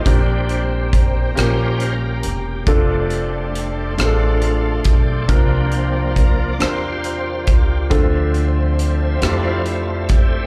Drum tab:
HH |xxxxxx|xxxxxx|xxxxxx|xxxxxx|
SD |---r--|---r--|---r--|---r--|
BD |o-o---|o----o|o-o--o|o----o|